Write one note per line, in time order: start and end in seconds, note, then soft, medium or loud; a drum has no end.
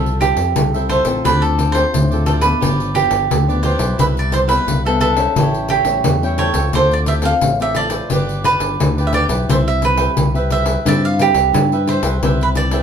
0.00 0.31 C2 medium
0.00 0.52 F3 medium
0.00 0.19 F4 medium
0.00 0.18 A4 medium
0.00 0.20 A4 medium
0.00 0.20 C5 medium
0.00 0.21 E5 medium
0.06 pandeiro soft
0.20 0.67 C4 medium
0.20 0.68 E4 medium
0.20 0.71 F4 soft
0.20 0.86 G4 medium
0.20 0.72 A4 soft
0.20 0.68 A4 medium
0.20 0.72 C5 medium
0.20 0.72 E5 medium
0.20 pandeiro medium
0.36 0.52 F2 medium
0.36 pandeiro medium
0.56 1.00 C2 medium
0.56 1.21 C3 medium
0.56 pandeiro medium
0.74 1.03 C4 medium
0.74 1.03 E4 medium
0.74 1.03 A4 medium
0.74 0.88 A4 soft
0.74 0.89 C5 soft
0.74 0.89 E5 soft
0.74 pandeiro soft
0.89 1.05 F4 medium
0.89 1.05 A4 medium
0.89 1.22 C5 medium
0.89 1.05 C5 medium
0.89 1.03 E5 medium
0.89 pandeiro medium
1.04 1.21 A1 medium
1.04 1.70 C4 medium
1.04 1.70 F4 medium
1.04 1.23 A4 soft
1.04 1.70 A4 medium
1.04 1.22 C5 soft
1.04 1.22 E5 soft
1.04 pandeiro medium
1.24 1.83 D2 medium
1.24 1.90 D3 medium
1.24 1.57 F4 medium
1.24 1.57 A4 medium
1.24 1.43 B4 medium
1.24 1.58 C5 medium
1.24 1.58 D5 medium
1.24 pandeiro medium
1.42 1.77 A4 medium
1.42 pandeiro soft
1.58 1.73 F4 soft
1.58 1.73 A4 soft
1.58 1.73 C5 medium
1.58 1.74 D5 medium
1.58 pandeiro medium
1.72 2.04 C4 medium
1.72 1.84 F4 medium
1.72 2.04 F4 medium
1.72 1.84 A4 medium
1.72 2.05 A4 medium
1.72 2.22 C5 medium
1.72 1.84 C5 medium
1.72 1.85 D5 medium
1.72 pandeiro medium
1.94 2.52 D2 medium
1.94 2.59 A2 medium
1.94 pandeiro medium
2.11 2.41 C4 medium
2.11 2.41 F4 medium
2.11 2.26 A4 soft
2.11 2.41 A4 medium
2.11 2.27 C5 soft
2.11 2.26 D5 soft
2.11 pandeiro soft
2.26 2.43 F4 medium
2.26 2.31 A4 medium
2.26 2.43 A4 medium
2.26 2.42 C5 medium
2.26 2.41 D5 medium
2.26 pandeiro medium
2.41 2.89 F3 medium
2.41 2.89 B3 medium
2.41 2.90 D4 medium
2.41 2.60 A4 soft
2.41 2.96 B4 medium
2.41 2.60 C5 soft
2.41 2.59 D5 soft
2.41 pandeiro medium
2.60 3.06 G1 medium
2.60 3.27 G2 medium
2.60 2.93 F4 medium
2.60 2.94 G4 medium
2.60 2.95 B4 medium
2.60 2.95 D5 medium
2.60 pandeiro medium
2.80 pandeiro soft
2.94 3.28 F3 medium
2.94 3.28 B3 soft
2.94 3.28 D4 medium
2.94 3.45 F4 soft
2.94 3.60 G4 medium
2.94 3.46 G4 medium
2.94 3.46 B4 soft
2.94 3.46 D5 medium
2.94 pandeiro medium
3.11 3.27 G1 medium
3.11 pandeiro medium
3.30 3.74 D2 medium
3.30 3.96 D3 soft
3.30 pandeiro medium
3.48 3.77 F3 medium
3.48 3.77 B3 medium
3.48 3.77 D4 medium
3.48 3.63 G4 soft
3.48 3.64 B4 soft
3.48 3.64 D5 soft
3.48 pandeiro soft
3.63 3.80 F4 medium
3.63 3.80 G4 medium
3.63 3.80 B4 medium
3.63 3.96 C5 medium
3.63 3.78 D5 medium
3.63 pandeiro medium
3.78 3.95 B1 medium
3.78 4.43 G3 medium
3.78 4.43 E4 medium
3.78 3.97 G4 soft
3.78 3.97 B4 soft
3.78 3.96 D5 soft
3.78 pandeiro medium
3.97 4.57 C2 medium
3.97 4.63 C3 soft
3.97 4.30 E4 medium
3.97 4.05 B4 medium
3.97 4.32 B4 medium
3.97 4.31 C5 medium
3.97 4.32 E5 medium
3.97 pandeiro medium
4.17 4.34 D5 medium
4.17 pandeiro soft
4.32 4.46 E4 soft
4.32 4.47 B4 soft
4.32 4.47 C5 medium
4.32 4.39 C5 medium
4.32 4.48 E5 soft
4.32 pandeiro medium
4.47 4.78 G3 medium
4.47 4.78 B3 medium
4.47 4.58 E4 medium
4.47 4.78 E4 medium
4.47 4.58 B4 medium
4.47 4.81 B4 medium
4.47 4.58 C5 medium
4.47 4.59 E5 medium
4.47 pandeiro medium
4.67 5.26 C2 medium
4.67 5.32 G2 medium
4.67 pandeiro medium
4.85 5.14 G3 medium
4.85 5.14 B3 medium
4.85 5.14 E4 medium
4.85 5.00 A4 medium
4.85 5.01 B4 soft
4.85 5.00 C5 soft
4.85 5.01 E5 soft
4.85 pandeiro soft
5.00 5.17 E4 medium
5.00 5.72 A4 medium
5.00 5.17 B4 medium
5.00 5.17 C5 medium
5.00 5.16 E5 medium
5.00 pandeiro medium
5.16 5.81 G3 medium
5.16 5.81 C#4 medium
5.16 5.81 E4 medium
5.16 5.34 B4 soft
5.16 5.35 C5 soft
5.16 5.34 E5 soft
5.16 pandeiro medium
5.36 5.80 A1 medium
5.36 6.01 A2 medium
5.36 5.68 E4 medium
5.36 5.69 A4 medium
5.36 5.69 C#5 medium
5.36 5.70 G5 medium
5.36 pandeiro medium
5.54 pandeiro soft
5.68 6.20 E4 soft
5.68 6.35 G4 medium
5.68 6.20 A4 medium
5.68 6.20 C#5 medium
5.68 6.21 G5 medium
5.68 pandeiro medium
5.85 6.01 A1 medium
5.85 6.15 G3 medium
5.85 6.15 C#4 medium
5.85 6.15 E4 medium
5.85 pandeiro medium
6.04 6.49 E2 medium
6.04 6.70 E3 medium
6.04 pandeiro medium
6.22 6.51 G3 medium
6.22 6.51 C#4 medium
6.22 6.51 E4 medium
6.22 6.38 A4 soft
6.22 6.38 C#5 soft
6.22 6.39 G5 soft
6.22 pandeiro soft
6.38 6.54 E4 medium
6.38 6.55 A4 medium
6.38 6.71 C#5 medium
6.38 6.55 C#5 medium
6.38 6.54 G5 medium
6.38 pandeiro medium
6.53 6.70 C#2 medium
6.53 7.18 C4 medium
6.53 7.18 F4 medium
6.53 7.18 A4 medium
6.53 6.72 A4 soft
6.53 6.72 C#5 soft
6.53 6.72 G5 soft
6.53 pandeiro medium
6.73 7.32 D2 medium
6.73 7.39 D3 medium
6.73 7.05 F4 medium
6.73 7.07 A4 medium
6.73 7.07 C5 medium
6.73 6.92 C5 medium
6.73 7.07 D5 medium
6.73 pandeiro medium
6.91 6.98 D5 medium
6.91 pandeiro soft
7.06 7.22 F4 soft
7.06 7.22 A4 soft
7.06 7.23 C5 soft
7.06 7.23 D5 medium
7.06 7.13 E5 medium
7.06 pandeiro medium
7.22 7.52 C4 medium
7.22 7.53 F4 medium
7.22 7.33 F4 medium
7.22 7.53 A4 medium
7.22 7.33 A4 medium
7.22 7.33 C5 medium
7.22 7.34 D5 medium
7.22 7.57 F5 loud
7.22 pandeiro medium
7.41 8.00 A1 medium
7.41 8.07 A2 medium
7.41 pandeiro medium
7.60 7.88 C4 medium
7.60 7.89 F4 medium
7.60 7.89 A4 medium
7.60 7.75 A4 soft
7.60 7.75 C5 soft
7.60 7.76 D5 soft
7.60 7.78 E5 loud
7.60 pandeiro soft
7.75 7.91 F4 medium
7.75 7.91 A4 medium
7.75 7.90 C5 medium
7.75 8.41 D5 medium
7.75 7.89 D5 medium
7.75 pandeiro medium
7.90 8.38 D4 medium
7.90 8.39 F4 medium
7.90 8.09 A4 soft
7.90 8.39 B4 medium
7.90 8.08 C5 soft
7.90 8.08 D5 soft
7.90 pandeiro medium
8.10 8.54 G1 medium
8.10 8.76 G3 medium
8.10 8.43 F4 medium
8.10 8.43 G4 medium
8.10 8.44 B4 medium
8.10 8.45 D5 medium
8.10 pandeiro medium
8.29 pandeiro soft
8.44 8.91 D4 soft
8.44 8.95 F4 soft
8.44 8.91 F4 medium
8.44 8.95 G4 medium
8.44 8.91 B4 medium
8.44 9.03 B4 medium
8.44 8.95 B4 medium
8.44 8.96 D5 medium
8.44 pandeiro medium
8.60 8.75 G1 medium
8.60 pandeiro medium
8.80 9.24 D2 medium
8.80 9.45 D3 medium
8.80 pandeiro medium
8.98 9.27 D4 medium
8.98 9.27 F4 medium
8.98 9.13 G4 soft
8.98 9.13 B4 soft
8.98 9.27 B4 medium
8.98 9.13 D5 soft
8.98 pandeiro soft
9.07 9.14 E5 medium
9.13 9.29 F4 medium
9.13 9.30 G4 medium
9.13 9.30 B4 medium
9.13 9.23 D5 medium
9.13 9.29 D5 medium
9.13 pandeiro medium
9.28 9.44 B1 medium
9.28 9.93 E4 medium
9.28 9.93 G4 medium
9.28 9.47 G4 soft
9.28 9.93 B4 medium
9.28 9.47 B4 soft
9.28 9.46 D5 soft
9.28 pandeiro medium
9.48 10.07 C2 medium
9.48 10.13 C4 soft
9.48 9.81 E4 medium
9.48 9.82 B4 medium
9.48 9.82 C5 medium
9.48 9.55 C5 medium
9.48 9.83 E5 medium
9.48 pandeiro medium
9.67 9.84 E5 medium
9.67 pandeiro soft
9.82 9.97 E4 soft
9.82 9.98 B4 medium
9.82 10.54 B4 medium
9.82 9.97 C5 soft
9.82 9.98 E5 medium
9.82 pandeiro medium
9.97 10.27 E4 medium
9.97 10.08 E4 medium
9.97 10.27 G4 medium
9.97 10.28 B4 medium
9.97 10.08 B4 medium
9.97 10.08 C5 medium
9.97 10.09 E5 medium
9.97 pandeiro medium
10.17 10.76 C2 medium
10.17 10.82 G3 medium
10.17 pandeiro medium
10.34 10.63 E4 medium
10.34 10.63 G4 medium
10.34 10.63 B4 medium
10.34 10.51 B4 soft
10.34 10.51 C5 soft
10.34 10.51 E5 soft
10.34 pandeiro soft
10.50 10.67 E4 medium
10.50 10.66 B4 medium
10.50 10.67 C5 medium
10.50 10.87 E5 medium
10.50 10.65 E5 medium
10.50 pandeiro medium
10.65 10.78 E4 medium
10.65 10.79 G4 medium
10.65 10.79 B4 medium
10.65 10.84 B4 soft
10.65 10.84 C5 soft
10.65 10.83 E5 soft
10.65 pandeiro medium
10.85 11.29 G2 medium
10.85 11.51 C4 medium
10.85 11.05 E4 medium
10.85 11.18 E4 medium
10.85 11.06 G4 medium
10.85 11.06 B4 medium
10.85 11.19 B4 medium
10.85 11.19 C5 medium
10.85 11.05 D5 loud
10.85 11.20 E5 medium
10.85 pandeiro medium
11.04 11.22 F5 medium
11.04 pandeiro soft
11.19 11.51 E4 soft
11.19 11.70 E4 soft
11.19 11.51 G4 soft
11.19 11.85 G4 medium
11.19 11.52 B4 medium
11.19 11.71 B4 soft
11.19 11.70 C5 soft
11.19 11.71 E5 medium
11.19 pandeiro medium
11.34 11.50 C2 medium
11.34 pandeiro medium
11.53 11.97 G2 medium
11.53 12.19 G3 medium
11.53 pandeiro medium
11.72 12.01 E4 medium
11.72 12.01 G4 medium
11.72 12.01 B4 medium
11.72 11.88 B4 soft
11.72 11.88 C5 soft
11.72 11.88 E5 soft
11.72 pandeiro soft
11.87 12.04 E4 medium
11.87 12.03 B4 medium
11.87 12.42 C5 medium
11.87 12.04 C5 medium
11.87 12.03 E5 medium
11.87 pandeiro medium
12.03 12.19 C2 medium
12.03 12.16 E4 medium
12.03 12.17 G4 medium
12.03 12.21 B4 soft
12.03 12.17 B4 medium
12.03 12.21 C5 soft
12.03 12.21 E5 soft
12.03 pandeiro medium
12.22 12.81 C2 medium
12.22 12.83 C4 medium
12.22 12.69 E4 soft
12.22 12.55 E4 medium
12.22 12.69 G4 medium
12.22 12.69 B4 medium
12.22 12.56 B4 medium
12.22 12.55 C5 medium
12.22 12.57 E5 medium
12.22 pandeiro medium
12.41 12.48 B4 medium
12.41 pandeiro soft
12.55 12.71 E4 soft
12.55 12.72 B4 soft
12.55 12.72 C5 medium
12.55 12.83 D5 medium
12.55 12.72 E5 medium
12.55 pandeiro medium
12.71 12.83 E4 medium
12.71 12.83 G4 medium
12.71 12.83 B4 medium
12.71 12.83 C5 medium
12.71 12.83 E5 medium
12.71 pandeiro medium